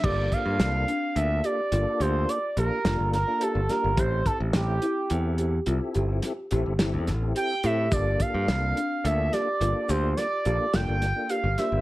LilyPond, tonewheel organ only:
\new Staff \with { instrumentName = "Tonewheel organ" } { \time 7/4 \key g \dorian \tempo 4 = 107 <bes d' f' a'>4. r8 <bes d' f' a'>8. r16 <bes d' f' a'>4~ <bes d' f' a'>16 r16 <bes d' f' a'>8 <bes d' f' a'>8 r16 <bes d' f' a'>8 r16 <bes d' f' a'>8 | <c' e' g' a'>4. r8 <c' e' g' a'>8. r16 <c' e' g' a'>4~ <c' e' g' a'>16 r16 <c' e' g' a'>8 <c' e' g' a'>8 r16 <c' e' g' a'>8 r16 <c' e' g' a'>8 | <bes d' f' a'>4. r8 <bes d' f' a'>8. r16 <bes d' f' a'>4~ <bes d' f' a'>16 r16 <bes d' f' a'>8 <bes d' f' a'>8 r16 <bes d' f' a'>8 r16 <bes d' f' c''>8 | }